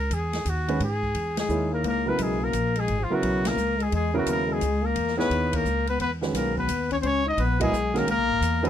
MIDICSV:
0, 0, Header, 1, 6, 480
1, 0, Start_track
1, 0, Tempo, 346420
1, 1111, Time_signature, 3, 2, 24, 8
1, 12051, End_track
2, 0, Start_track
2, 0, Title_t, "Trumpet"
2, 0, Program_c, 0, 56
2, 0, Note_on_c, 0, 70, 91
2, 184, Note_on_c, 0, 68, 78
2, 205, Note_off_c, 0, 70, 0
2, 682, Note_on_c, 0, 66, 76
2, 703, Note_off_c, 0, 68, 0
2, 1136, Note_off_c, 0, 66, 0
2, 1156, Note_on_c, 0, 68, 86
2, 1869, Note_off_c, 0, 68, 0
2, 1933, Note_on_c, 0, 68, 80
2, 2364, Note_off_c, 0, 68, 0
2, 2409, Note_on_c, 0, 70, 78
2, 2554, Note_off_c, 0, 70, 0
2, 2603, Note_on_c, 0, 70, 95
2, 2891, Note_on_c, 0, 71, 85
2, 2912, Note_off_c, 0, 70, 0
2, 3083, Note_on_c, 0, 68, 79
2, 3104, Note_off_c, 0, 71, 0
2, 3376, Note_on_c, 0, 70, 88
2, 3397, Note_off_c, 0, 68, 0
2, 3871, Note_on_c, 0, 68, 90
2, 3891, Note_off_c, 0, 70, 0
2, 4203, Note_on_c, 0, 65, 77
2, 4224, Note_off_c, 0, 68, 0
2, 4354, Note_on_c, 0, 66, 87
2, 4375, Note_off_c, 0, 65, 0
2, 4820, Note_on_c, 0, 70, 90
2, 4841, Note_off_c, 0, 66, 0
2, 5306, Note_on_c, 0, 68, 79
2, 5327, Note_off_c, 0, 70, 0
2, 5453, Note_off_c, 0, 68, 0
2, 5477, Note_on_c, 0, 68, 91
2, 5743, Note_off_c, 0, 68, 0
2, 5791, Note_on_c, 0, 66, 78
2, 5926, Note_off_c, 0, 66, 0
2, 5972, Note_on_c, 0, 70, 89
2, 6269, Note_on_c, 0, 68, 85
2, 6290, Note_off_c, 0, 70, 0
2, 6725, Note_on_c, 0, 70, 91
2, 6746, Note_off_c, 0, 68, 0
2, 7180, Note_off_c, 0, 70, 0
2, 7188, Note_on_c, 0, 71, 100
2, 7700, Note_on_c, 0, 70, 97
2, 7720, Note_off_c, 0, 71, 0
2, 8152, Note_off_c, 0, 70, 0
2, 8160, Note_on_c, 0, 71, 88
2, 8310, Note_off_c, 0, 71, 0
2, 8332, Note_on_c, 0, 71, 96
2, 8467, Note_off_c, 0, 71, 0
2, 8812, Note_on_c, 0, 70, 80
2, 9090, Note_off_c, 0, 70, 0
2, 9118, Note_on_c, 0, 71, 89
2, 9556, Note_off_c, 0, 71, 0
2, 9599, Note_on_c, 0, 73, 87
2, 9652, Note_off_c, 0, 73, 0
2, 9723, Note_on_c, 0, 72, 80
2, 9770, Note_on_c, 0, 73, 108
2, 9791, Note_off_c, 0, 72, 0
2, 10069, Note_off_c, 0, 73, 0
2, 10087, Note_on_c, 0, 75, 99
2, 10241, Note_on_c, 0, 71, 89
2, 10262, Note_off_c, 0, 75, 0
2, 10545, Note_off_c, 0, 71, 0
2, 10573, Note_on_c, 0, 68, 96
2, 11063, Note_on_c, 0, 70, 89
2, 11084, Note_off_c, 0, 68, 0
2, 11212, Note_off_c, 0, 70, 0
2, 11240, Note_on_c, 0, 70, 110
2, 12047, Note_off_c, 0, 70, 0
2, 12051, End_track
3, 0, Start_track
3, 0, Title_t, "Upright piano"
3, 0, Program_c, 1, 0
3, 944, Note_on_c, 1, 51, 58
3, 950, Note_on_c, 1, 56, 57
3, 955, Note_on_c, 1, 66, 57
3, 956, Note_on_c, 1, 61, 66
3, 961, Note_on_c, 1, 71, 72
3, 1096, Note_off_c, 1, 51, 0
3, 1099, Note_off_c, 1, 56, 0
3, 1102, Note_off_c, 1, 61, 0
3, 1102, Note_off_c, 1, 66, 0
3, 1104, Note_off_c, 1, 71, 0
3, 2059, Note_on_c, 1, 64, 53
3, 2063, Note_on_c, 1, 58, 48
3, 2071, Note_on_c, 1, 63, 47
3, 2074, Note_on_c, 1, 73, 54
3, 2079, Note_on_c, 1, 68, 48
3, 2792, Note_off_c, 1, 64, 0
3, 2794, Note_off_c, 1, 58, 0
3, 2798, Note_off_c, 1, 63, 0
3, 2799, Note_off_c, 1, 73, 0
3, 2802, Note_off_c, 1, 68, 0
3, 2849, Note_on_c, 1, 49, 57
3, 2854, Note_on_c, 1, 54, 58
3, 2857, Note_on_c, 1, 59, 53
3, 2863, Note_on_c, 1, 64, 52
3, 2871, Note_on_c, 1, 70, 71
3, 3471, Note_off_c, 1, 49, 0
3, 3473, Note_off_c, 1, 54, 0
3, 3475, Note_off_c, 1, 59, 0
3, 3478, Note_off_c, 1, 64, 0
3, 3482, Note_off_c, 1, 70, 0
3, 4299, Note_on_c, 1, 54, 63
3, 4300, Note_on_c, 1, 49, 69
3, 4306, Note_on_c, 1, 59, 71
3, 4309, Note_on_c, 1, 64, 72
3, 4318, Note_on_c, 1, 70, 82
3, 4916, Note_off_c, 1, 54, 0
3, 4917, Note_off_c, 1, 49, 0
3, 4919, Note_off_c, 1, 59, 0
3, 4921, Note_off_c, 1, 64, 0
3, 4925, Note_off_c, 1, 70, 0
3, 5732, Note_on_c, 1, 49, 71
3, 5738, Note_on_c, 1, 54, 69
3, 5741, Note_on_c, 1, 64, 68
3, 5743, Note_on_c, 1, 59, 67
3, 5746, Note_on_c, 1, 70, 87
3, 6352, Note_off_c, 1, 49, 0
3, 6356, Note_off_c, 1, 54, 0
3, 6357, Note_off_c, 1, 64, 0
3, 6358, Note_off_c, 1, 59, 0
3, 6359, Note_off_c, 1, 70, 0
3, 7166, Note_on_c, 1, 64, 64
3, 7171, Note_on_c, 1, 59, 67
3, 7177, Note_on_c, 1, 63, 59
3, 7179, Note_on_c, 1, 68, 65
3, 7184, Note_on_c, 1, 73, 82
3, 7789, Note_off_c, 1, 64, 0
3, 7792, Note_off_c, 1, 59, 0
3, 7795, Note_off_c, 1, 63, 0
3, 7796, Note_off_c, 1, 68, 0
3, 7799, Note_off_c, 1, 73, 0
3, 8609, Note_on_c, 1, 56, 54
3, 8610, Note_on_c, 1, 51, 54
3, 8618, Note_on_c, 1, 61, 49
3, 8619, Note_on_c, 1, 66, 50
3, 8629, Note_on_c, 1, 71, 61
3, 9231, Note_off_c, 1, 56, 0
3, 9232, Note_off_c, 1, 51, 0
3, 9236, Note_off_c, 1, 61, 0
3, 9236, Note_off_c, 1, 66, 0
3, 9241, Note_off_c, 1, 71, 0
3, 10528, Note_on_c, 1, 54, 72
3, 10534, Note_on_c, 1, 59, 62
3, 10541, Note_on_c, 1, 64, 71
3, 10546, Note_on_c, 1, 70, 67
3, 10549, Note_on_c, 1, 75, 84
3, 10688, Note_off_c, 1, 54, 0
3, 10691, Note_off_c, 1, 59, 0
3, 10694, Note_off_c, 1, 64, 0
3, 10696, Note_off_c, 1, 70, 0
3, 10698, Note_off_c, 1, 75, 0
3, 10997, Note_on_c, 1, 51, 67
3, 11008, Note_on_c, 1, 56, 59
3, 11008, Note_on_c, 1, 66, 63
3, 11013, Note_on_c, 1, 61, 58
3, 11019, Note_on_c, 1, 70, 75
3, 11162, Note_off_c, 1, 51, 0
3, 11168, Note_off_c, 1, 56, 0
3, 11168, Note_off_c, 1, 66, 0
3, 11170, Note_off_c, 1, 61, 0
3, 11173, Note_off_c, 1, 70, 0
3, 11953, Note_on_c, 1, 51, 76
3, 11958, Note_on_c, 1, 56, 69
3, 11965, Note_on_c, 1, 61, 68
3, 11965, Note_on_c, 1, 66, 73
3, 11969, Note_on_c, 1, 71, 90
3, 12051, Note_off_c, 1, 51, 0
3, 12051, Note_off_c, 1, 56, 0
3, 12051, Note_off_c, 1, 61, 0
3, 12051, Note_off_c, 1, 66, 0
3, 12051, Note_off_c, 1, 71, 0
3, 12051, End_track
4, 0, Start_track
4, 0, Title_t, "Trombone"
4, 0, Program_c, 2, 57
4, 1908, Note_on_c, 2, 56, 63
4, 2350, Note_off_c, 2, 56, 0
4, 2383, Note_on_c, 2, 58, 66
4, 2540, Note_off_c, 2, 58, 0
4, 2560, Note_on_c, 2, 58, 74
4, 2876, Note_on_c, 2, 59, 68
4, 2897, Note_off_c, 2, 58, 0
4, 3043, Note_on_c, 2, 56, 63
4, 3063, Note_off_c, 2, 59, 0
4, 3342, Note_on_c, 2, 58, 75
4, 3362, Note_off_c, 2, 56, 0
4, 3835, Note_on_c, 2, 56, 72
4, 3855, Note_off_c, 2, 58, 0
4, 4173, Note_on_c, 2, 53, 55
4, 4194, Note_off_c, 2, 56, 0
4, 4295, Note_on_c, 2, 54, 67
4, 4316, Note_off_c, 2, 53, 0
4, 4773, Note_on_c, 2, 58, 82
4, 4794, Note_off_c, 2, 54, 0
4, 5261, Note_on_c, 2, 56, 70
4, 5281, Note_off_c, 2, 58, 0
4, 5419, Note_off_c, 2, 56, 0
4, 5427, Note_on_c, 2, 56, 81
4, 5716, Note_off_c, 2, 56, 0
4, 5748, Note_on_c, 2, 54, 67
4, 5897, Note_off_c, 2, 54, 0
4, 5905, Note_on_c, 2, 58, 71
4, 6203, Note_on_c, 2, 56, 73
4, 6224, Note_off_c, 2, 58, 0
4, 6685, Note_on_c, 2, 58, 83
4, 6706, Note_off_c, 2, 56, 0
4, 7167, Note_off_c, 2, 58, 0
4, 7176, Note_on_c, 2, 59, 72
4, 7656, Note_on_c, 2, 58, 75
4, 7677, Note_off_c, 2, 59, 0
4, 8138, Note_off_c, 2, 58, 0
4, 8171, Note_on_c, 2, 59, 76
4, 8311, Note_off_c, 2, 59, 0
4, 8319, Note_on_c, 2, 59, 77
4, 8456, Note_off_c, 2, 59, 0
4, 8794, Note_on_c, 2, 58, 67
4, 9080, Note_off_c, 2, 58, 0
4, 9100, Note_on_c, 2, 59, 75
4, 9546, Note_off_c, 2, 59, 0
4, 9585, Note_on_c, 2, 61, 82
4, 9642, Note_off_c, 2, 61, 0
4, 9712, Note_on_c, 2, 60, 62
4, 9741, Note_on_c, 2, 61, 91
4, 9762, Note_off_c, 2, 60, 0
4, 10055, Note_off_c, 2, 61, 0
4, 10063, Note_on_c, 2, 63, 73
4, 10245, Note_on_c, 2, 59, 75
4, 10265, Note_off_c, 2, 63, 0
4, 10535, Note_off_c, 2, 59, 0
4, 10543, Note_on_c, 2, 56, 81
4, 11022, Note_on_c, 2, 58, 79
4, 11042, Note_off_c, 2, 56, 0
4, 11186, Note_off_c, 2, 58, 0
4, 11194, Note_on_c, 2, 58, 91
4, 11986, Note_on_c, 2, 56, 80
4, 12007, Note_off_c, 2, 58, 0
4, 12051, Note_off_c, 2, 56, 0
4, 12051, End_track
5, 0, Start_track
5, 0, Title_t, "Upright bass"
5, 0, Program_c, 3, 32
5, 147, Note_on_c, 3, 40, 91
5, 614, Note_off_c, 3, 40, 0
5, 628, Note_on_c, 3, 39, 94
5, 1095, Note_off_c, 3, 39, 0
5, 1109, Note_on_c, 3, 44, 83
5, 1576, Note_off_c, 3, 44, 0
5, 1589, Note_on_c, 3, 40, 87
5, 2055, Note_off_c, 3, 40, 0
5, 2061, Note_on_c, 3, 39, 90
5, 2531, Note_off_c, 3, 39, 0
5, 2546, Note_on_c, 3, 37, 80
5, 3013, Note_off_c, 3, 37, 0
5, 3020, Note_on_c, 3, 35, 84
5, 3490, Note_off_c, 3, 35, 0
5, 3508, Note_on_c, 3, 34, 95
5, 3975, Note_off_c, 3, 34, 0
5, 3988, Note_on_c, 3, 32, 79
5, 4276, Note_off_c, 3, 32, 0
5, 4466, Note_on_c, 3, 35, 86
5, 4928, Note_off_c, 3, 35, 0
5, 4936, Note_on_c, 3, 37, 91
5, 5409, Note_off_c, 3, 37, 0
5, 5434, Note_on_c, 3, 40, 80
5, 5894, Note_off_c, 3, 40, 0
5, 5903, Note_on_c, 3, 39, 87
5, 6372, Note_off_c, 3, 39, 0
5, 6390, Note_on_c, 3, 37, 87
5, 6856, Note_off_c, 3, 37, 0
5, 6862, Note_on_c, 3, 40, 84
5, 7332, Note_off_c, 3, 40, 0
5, 7341, Note_on_c, 3, 39, 85
5, 7811, Note_off_c, 3, 39, 0
5, 7826, Note_on_c, 3, 37, 83
5, 8294, Note_off_c, 3, 37, 0
5, 8300, Note_on_c, 3, 40, 78
5, 8763, Note_off_c, 3, 40, 0
5, 8772, Note_on_c, 3, 35, 90
5, 9243, Note_off_c, 3, 35, 0
5, 9251, Note_on_c, 3, 39, 86
5, 9726, Note_off_c, 3, 39, 0
5, 9733, Note_on_c, 3, 37, 80
5, 10207, Note_off_c, 3, 37, 0
5, 10217, Note_on_c, 3, 34, 90
5, 10689, Note_off_c, 3, 34, 0
5, 10698, Note_on_c, 3, 35, 86
5, 11169, Note_off_c, 3, 35, 0
5, 11176, Note_on_c, 3, 37, 80
5, 11334, Note_off_c, 3, 37, 0
5, 11334, Note_on_c, 3, 35, 58
5, 11479, Note_off_c, 3, 35, 0
5, 11488, Note_on_c, 3, 32, 61
5, 11643, Note_off_c, 3, 32, 0
5, 11651, Note_on_c, 3, 40, 92
5, 12051, Note_off_c, 3, 40, 0
5, 12051, End_track
6, 0, Start_track
6, 0, Title_t, "Drums"
6, 149, Note_on_c, 9, 44, 49
6, 149, Note_on_c, 9, 51, 60
6, 288, Note_off_c, 9, 44, 0
6, 288, Note_off_c, 9, 51, 0
6, 460, Note_on_c, 9, 51, 46
6, 461, Note_on_c, 9, 38, 54
6, 598, Note_off_c, 9, 51, 0
6, 600, Note_off_c, 9, 38, 0
6, 631, Note_on_c, 9, 44, 55
6, 631, Note_on_c, 9, 51, 57
6, 770, Note_off_c, 9, 44, 0
6, 770, Note_off_c, 9, 51, 0
6, 948, Note_on_c, 9, 51, 44
6, 1086, Note_off_c, 9, 51, 0
6, 1113, Note_on_c, 9, 51, 56
6, 1252, Note_off_c, 9, 51, 0
6, 1423, Note_on_c, 9, 36, 49
6, 1562, Note_off_c, 9, 36, 0
6, 1587, Note_on_c, 9, 51, 58
6, 1726, Note_off_c, 9, 51, 0
6, 1900, Note_on_c, 9, 51, 65
6, 1901, Note_on_c, 9, 38, 78
6, 2038, Note_off_c, 9, 51, 0
6, 2040, Note_off_c, 9, 38, 0
6, 2069, Note_on_c, 9, 44, 44
6, 2208, Note_off_c, 9, 44, 0
6, 2550, Note_on_c, 9, 51, 52
6, 2689, Note_off_c, 9, 51, 0
6, 3028, Note_on_c, 9, 44, 47
6, 3028, Note_on_c, 9, 51, 61
6, 3166, Note_off_c, 9, 44, 0
6, 3166, Note_off_c, 9, 51, 0
6, 3508, Note_on_c, 9, 44, 50
6, 3508, Note_on_c, 9, 51, 56
6, 3647, Note_off_c, 9, 44, 0
6, 3647, Note_off_c, 9, 51, 0
6, 3818, Note_on_c, 9, 51, 49
6, 3956, Note_off_c, 9, 51, 0
6, 3989, Note_on_c, 9, 51, 50
6, 4128, Note_off_c, 9, 51, 0
6, 4474, Note_on_c, 9, 51, 58
6, 4612, Note_off_c, 9, 51, 0
6, 4780, Note_on_c, 9, 51, 70
6, 4782, Note_on_c, 9, 38, 80
6, 4919, Note_off_c, 9, 51, 0
6, 4920, Note_off_c, 9, 38, 0
6, 4954, Note_on_c, 9, 44, 60
6, 5092, Note_off_c, 9, 44, 0
6, 5267, Note_on_c, 9, 51, 45
6, 5406, Note_off_c, 9, 51, 0
6, 5433, Note_on_c, 9, 51, 56
6, 5572, Note_off_c, 9, 51, 0
6, 5909, Note_on_c, 9, 44, 57
6, 5909, Note_on_c, 9, 51, 74
6, 6048, Note_off_c, 9, 44, 0
6, 6048, Note_off_c, 9, 51, 0
6, 6389, Note_on_c, 9, 44, 53
6, 6389, Note_on_c, 9, 51, 57
6, 6528, Note_off_c, 9, 44, 0
6, 6528, Note_off_c, 9, 51, 0
6, 6867, Note_on_c, 9, 51, 54
6, 7006, Note_off_c, 9, 51, 0
6, 7033, Note_on_c, 9, 38, 27
6, 7172, Note_off_c, 9, 38, 0
6, 7199, Note_on_c, 9, 38, 44
6, 7337, Note_off_c, 9, 38, 0
6, 7359, Note_on_c, 9, 51, 54
6, 7497, Note_off_c, 9, 51, 0
6, 7661, Note_on_c, 9, 51, 74
6, 7663, Note_on_c, 9, 36, 80
6, 7799, Note_off_c, 9, 51, 0
6, 7802, Note_off_c, 9, 36, 0
6, 7832, Note_on_c, 9, 44, 53
6, 7971, Note_off_c, 9, 44, 0
6, 8137, Note_on_c, 9, 51, 45
6, 8276, Note_off_c, 9, 51, 0
6, 8309, Note_on_c, 9, 51, 54
6, 8447, Note_off_c, 9, 51, 0
6, 8621, Note_on_c, 9, 38, 55
6, 8759, Note_off_c, 9, 38, 0
6, 8792, Note_on_c, 9, 44, 54
6, 8792, Note_on_c, 9, 51, 73
6, 8794, Note_on_c, 9, 38, 34
6, 8931, Note_off_c, 9, 44, 0
6, 8931, Note_off_c, 9, 51, 0
6, 8932, Note_off_c, 9, 38, 0
6, 9101, Note_on_c, 9, 36, 58
6, 9240, Note_off_c, 9, 36, 0
6, 9263, Note_on_c, 9, 44, 54
6, 9263, Note_on_c, 9, 51, 70
6, 9402, Note_off_c, 9, 44, 0
6, 9402, Note_off_c, 9, 51, 0
6, 9569, Note_on_c, 9, 51, 43
6, 9577, Note_on_c, 9, 36, 41
6, 9708, Note_off_c, 9, 51, 0
6, 9716, Note_off_c, 9, 36, 0
6, 9743, Note_on_c, 9, 51, 54
6, 9881, Note_off_c, 9, 51, 0
6, 10223, Note_on_c, 9, 51, 63
6, 10362, Note_off_c, 9, 51, 0
6, 10538, Note_on_c, 9, 51, 82
6, 10540, Note_on_c, 9, 36, 84
6, 10676, Note_off_c, 9, 51, 0
6, 10679, Note_off_c, 9, 36, 0
6, 10714, Note_on_c, 9, 44, 63
6, 10852, Note_off_c, 9, 44, 0
6, 11024, Note_on_c, 9, 51, 44
6, 11026, Note_on_c, 9, 38, 35
6, 11163, Note_off_c, 9, 51, 0
6, 11164, Note_off_c, 9, 38, 0
6, 11192, Note_on_c, 9, 51, 62
6, 11330, Note_off_c, 9, 51, 0
6, 11671, Note_on_c, 9, 44, 54
6, 11671, Note_on_c, 9, 51, 64
6, 11810, Note_off_c, 9, 44, 0
6, 11810, Note_off_c, 9, 51, 0
6, 11984, Note_on_c, 9, 51, 45
6, 12051, Note_off_c, 9, 51, 0
6, 12051, End_track
0, 0, End_of_file